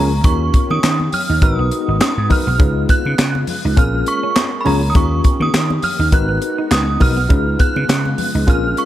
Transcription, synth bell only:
Already playing: A#5
0.25 C#6
0.71 D#6
1.14 F6
1.43 D#6
2.02 D#6
2.32 F6
2.90 F#6
3.79 F6
4.08 C#6
4.61 B5
4.67 A#5
4.90 D#6
4.96 C#6
5.42 D#6
5.84 F6
6.14 F#6
6.72 D#6
7.02 F6
7.60 F#6
8.50 F6
8.78 C#6

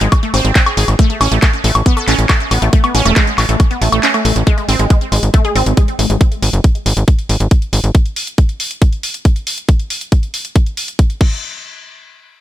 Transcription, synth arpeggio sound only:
0.01 G#3
0.23 A3
0.34 C4
0.45 C4
0.56 C4
0.66 G#4
0.77 G#4
0.99 A3
1.10 A3
1.21 C#4
1.32 A3
1.42 A3
1.64 A3
1.86 B3
1.97 A4
2.08 C#4
2.29 A3
2.51 B3
2.62 A3
2.73 A3
2.84 B3
2.95 C#4
3.05 A3
3.16 G#3
3.49 A3
3.71 B3
3.82 A3
3.92 A3
4.03 C#4
4.14 A3
4.25 A3
4.47 G#3
4.58 G#3
4.69 C4
4.79 G#3
4.90 G#3
5.12 G#3
5.34 A3
5.45 G#4
5.56 C4
5.77 G#3
5.99 A3
6.10 G#3

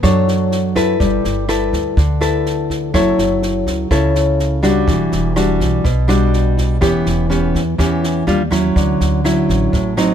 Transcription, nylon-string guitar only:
0.03 F#3 D4 A4 C#5
0.76 E4 A4 B4
1.00 G3
1.48 E4 A4 B4
1.97 D3
2.21 E4 A4 B4
2.94 F#3 E4 A4 C#5
3.91 C#3 E4 A4 C#5
4.63 G3 D4 F#4
4.87 E3
5.36 G3 D4 F#4
5.84 B2
6.08 G3 D4 F#4
6.81 E3 B3 C#4 G4
7.30 B3 C#4 G4
7.78 E3 B3 C#4 G4
8.27 G3 D4 F4
8.51 F#3 C#4 E4
8.76 D3
9.24 F#3 C#4 E4
9.72 A2
9.97 F#3 C4 D#4

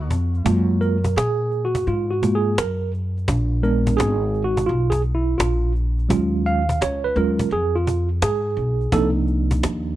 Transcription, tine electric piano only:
0.45 G#3 A#3 F4
0.81 A#4
1.17 G#4
1.65 F#4
1.88 F4
2.11 F#4
2.22 G#3 A#3 F4
2.35 G#4
2.58 A#4
3.63 G#3 B3 D4 A#4
3.97 G#4
4.44 F#4
4.66 F4
4.90 G#4
5.15 E4
5.38 F4
6.09 F#3 G#3 C#4 F4
6.46 F5
6.82 C#5
7.04 B4
7.16 F#3 G#3 C#4 F4 A#4
7.52 G#4
7.75 F4
8.23 G#4
8.93 F3 A#3 D4 D#4 A4

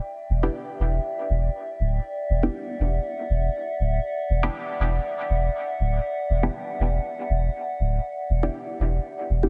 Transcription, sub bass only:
0.29 E1
0.79 E1
1.29 E1
1.79 D1
2.29 E1
2.79 E1
3.29 E1
3.79 D1
4.29 E1
4.79 E1
5.29 E1
5.79 D1
6.29 E1
6.79 E1
7.29 E1
7.79 D1
8.29 E1
8.79 E1
9.29 E1

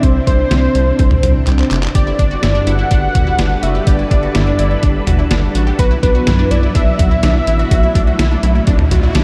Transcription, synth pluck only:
1.95 G4
2.07 E4
2.19 D4
2.31 F#4
2.43 E4
2.55 D4
2.67 E4
2.79 E4
2.91 D4
3.15 F#4
3.27 E4
3.39 D4
3.63 F#4
3.75 G4
3.87 G4
3.99 E4
4.11 D4
4.23 F#4
4.35 E4
4.47 D4
4.59 E4
4.71 E4
4.83 D4
5.07 F#4
5.19 E4
5.31 D4
5.55 F#4
5.67 G4
5.79 F#4
5.91 E4
6.03 D4
6.15 F#4
6.27 E4
6.39 D4
6.51 E4
6.63 E4
6.75 D4
6.99 F#4
7.11 E4
7.23 D4
7.47 E4
7.59 F#4
7.71 F#4
7.83 E4
7.95 D4
8.07 F#4
8.19 E4
8.31 D4
8.43 E4
8.55 E4
8.67 D4
8.91 F#4
9.03 E4
9.15 D4

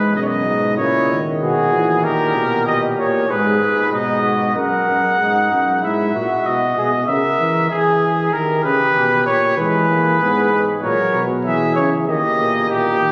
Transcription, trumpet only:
Already playing: B4
0.16 D#5
0.22 C#5
0.28 D#5
0.78 C#5
1.41 G#4
2.04 A#4
2.67 D#5
2.99 C#5
3.31 B4
3.93 D#5
4.56 F#5
5.84 E5
6.46 D#5
7.07 E5
7.71 G#4
8.33 A#4
8.64 B4
9.27 C#5
9.57 B4
10.82 C#5
11.45 E5
11.76 C#5
12.08 D#5
12.69 G4

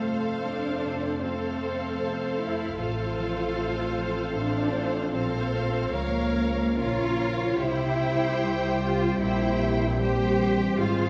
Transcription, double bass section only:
Already playing: F2
2.80 A1
5.14 A#1
5.93 C#2
6.80 A#1
7.62 C2
9.22 A#1
10.78 G#1

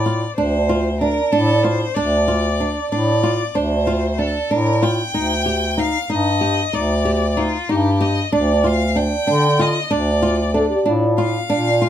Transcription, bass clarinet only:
Already playing: A2
0.38 D2
1.33 A2
1.97 D2
2.91 A2
3.55 D2
4.50 A2
5.14 D2
6.10 G2
6.74 D2
7.69 G2
8.33 D2
9.28 D3
9.92 D2
10.86 A2
11.50 A#2

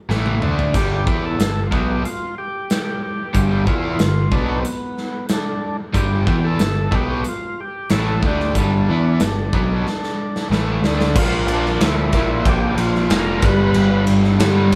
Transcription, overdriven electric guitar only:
0.09 A2 E3 A3
0.42 D3 A3 D4
0.75 G2 D3 G3
1.07 E3 B3 E4
1.39 G2 D3
1.71 B2 F#3 B3
3.34 G2 D3 G3
3.66 E3 B3 E4
3.98 G2 D3
4.32 B2 F#3 B3
5.93 G2 D3 G3
6.27 E3 B3 E4
6.59 G2 D3
6.91 B2 F#3 B3
7.90 A2 E3 A3
8.24 D3 A3 D4
8.55 G2 D3 G3
8.89 E3 B3 E4
9.22 G2 D3
9.54 B2 F#3 B3
10.52 A2 E3 A3
10.84 D3 A3 D4
11.17 A#2 F3 A#3
12.14 A#2 F3 A#3
13.10 A#2 F3
13.14 A#3
13.43 G2 D3 G3
14.39 G2 D3 G3

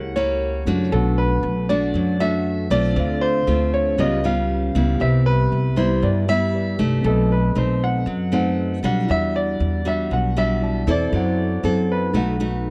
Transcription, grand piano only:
Already playing: F#5
0.16 C#5
0.92 A4
1.18 B4
1.69 D5
2.20 E5
2.71 D5
3.21 C5
3.74 C#5
4.00 D#5
4.26 F5
5.01 E5
5.26 B4
5.77 C5
6.03 D5
6.29 E5
7.06 A4
7.32 B4
7.58 C5
7.84 F#5
8.34 F#5
8.85 F#5
9.11 E5
9.36 D5
9.88 E5
10.13 F#5
10.38 E5
10.91 D5
11.92 B4

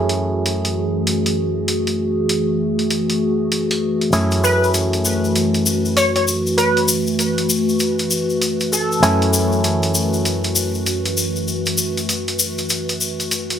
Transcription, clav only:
Already playing: F#2 A3 C#4 E4 G#4
4.13 F#2 A3 C#4 E4 G#4
9.03 F#2 A3 C#4 E4 G#5

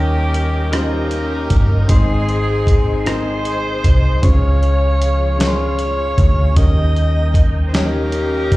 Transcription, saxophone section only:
Already playing: C#4 G4 A#4
0.75 A#3 C#4 G4
1.92 C4 D#4 G#4
7.75 A#3 C#4 G4

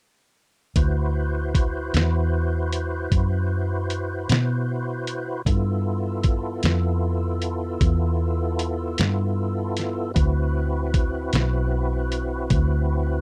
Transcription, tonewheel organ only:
0.76 E4 F#4 B4 C5
5.46 B3 E4 F4 A4
10.14 C4 E4 F#4 B4

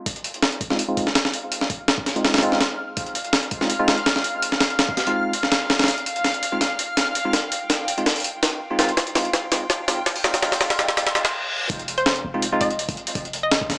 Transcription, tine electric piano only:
0.70 G#3 C4 D#4 F4
0.88 G#3 C4 D#4 F4
2.16 G#3 C4 D#4 F4
2.43 G#3 C4 D#4 F4
3.61 G#3 C4 D#4 F4
3.79 G#3 C4 D#4 F4
5.07 G#3 C4 D#4 F4
6.52 G#3 C4 D#4 F4
7.25 G#3 C4 D#4 F4
7.98 G#3 C4 D#4 F4
8.71 G#3 C4 D#4 F4
8.79 G#3 C4 D#4 F4
9.15 G#3 C4 D#4 F4
9.52 G#3 C4 D#4 F4
9.88 G#3 C4 D#4 F4
10.25 G#3 C4 D#4 F4
10.42 G#3 C4 D#4 F4
10.61 G#3 C4 D#4 F4
10.79 G#3 C4 D#4 F4
10.97 G#3 C4 D#4 F4
11.15 G#3 C4 D#4 F4
12.34 G#3 C4 D#4 F4
12.52 G#3 C4 D#4 F4

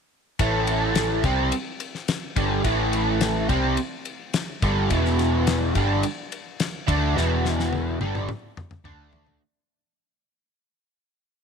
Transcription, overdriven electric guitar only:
0.40 A2 E3 A3
1.24 C3 G3 C4
2.36 G2 D3 G3
2.64 A2 E3 A3
3.49 C3 G3 C4
4.63 G2 D3 G3
4.91 E2 B2 E3
5.75 G2 D3 G3
6.88 D3 A3 D4
7.16 E2 B2 E3
8.01 G2 D3 G3
8.84 D3 A3 D4

